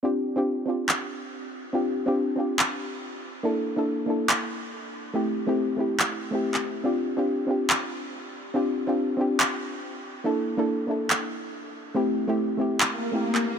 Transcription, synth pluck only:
X:1
M:4/4
L:1/16
Q:"Swing 16ths" 1/4=141
K:Cmix
V:1 name="Synth pluck"
[CDFG]3 [CDFG]3 [CDFG]8- [CDFG]2 | [CDFG]3 [CDFG]3 [CDFG]8- [CDFG]2 | [B,DEA]3 [B,DEA]3 [B,DEA]8- [B,DEA]2 | [A,CEG]3 [A,CEG]3 [A,CEG]4- [A,CEG] [A,CEG]4- [A,CEG] |
[CDFG]3 [CDFG]3 [CDFG]8- [CDFG]2 | [CDFG]3 [CDFG]3 [CDFG]8- [CDFG]2 | [B,DEA]3 [B,DEA]3 [B,DEA]8- [B,DEA]2 | [A,CEG]3 [A,CEG]3 [A,CEG]4- [A,CEG] [A,CEG]4- [A,CEG] |]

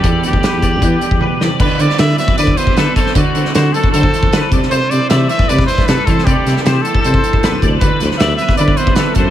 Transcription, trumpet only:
X:1
M:4/4
L:1/8
Q:1/4=154
K:Dmix
V:1 name="Trumpet"
G G6 z | B d e e d c B A | F2 F A A3 z | c d e e d c B A |
G2 G A A3 z | B z e e d c B A |]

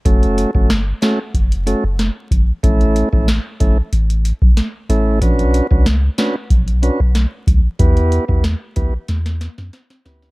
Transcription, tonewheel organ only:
X:1
M:4/4
L:1/16
Q:1/4=93
K:F#phr
V:1 name="Tonewheel organ"
[A,CFA]3 [A,CFA] z2 [A,CFA] z3 [A,CFA] z4 z | [A,CEA]3 [A,CEA] z2 [A,CEA] z6 z [A,CEA]2 | [CDFB]3 [CDFB] z2 [CDFB] z3 [CDFB] z4 z | [B,EGB]3 [B,EGB] z2 [B,EGB] z6 z [B,EGB]2 |]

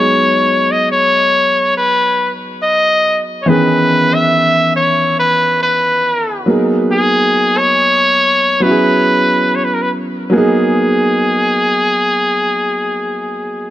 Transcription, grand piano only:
X:1
M:4/4
L:1/8
Q:"Swing 16ths" 1/4=70
K:G#m
V:1 name="Grand piano"
[F,G,B,DG]6- [F,G,B,DG] z | [D,E,B,CG]6- [D,E,B,CG] [F,A,B,DG]- | [F,A,B,DG]4 [F,B,CEFG]4 | [F,A,B,DG]8 |]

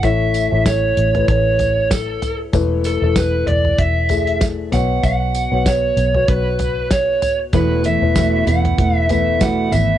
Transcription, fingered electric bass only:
X:1
M:4/4
L:1/16
Q:"Swing 16ths" 1/4=96
K:Emix
V:1 name="Fingered electric bass" clef=bass
A,,,3 A,,,3 A,,,2 A,,,6 z2 | E,,,3 E,,,3 E,,,2 E,,,6 B,,,2 | B,,,3 B,,,3 B,,,2 B,,,6 z2 | E,,,3 E,,,3 E,,,2 E,,,6 G,,,2 |]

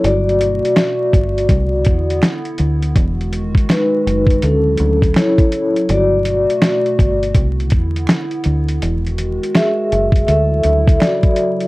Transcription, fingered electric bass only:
X:1
M:4/4
L:1/16
Q:"Swing 16ths" 1/4=82
K:E
V:1 name="Fingered electric bass" clef=bass
=G,,,3 z3 G,,,2 =C,,2 E,,2 z2 =D,,2 | E,,,3 z3 F,,,2 =D,,2 D,,2 z4 | =G,,,3 z3 G,,,2 =C,,2 E,,2 z2 =D,,2 | E,,,3 z3 F,,,2 =D,,2 D,,2 z4 |]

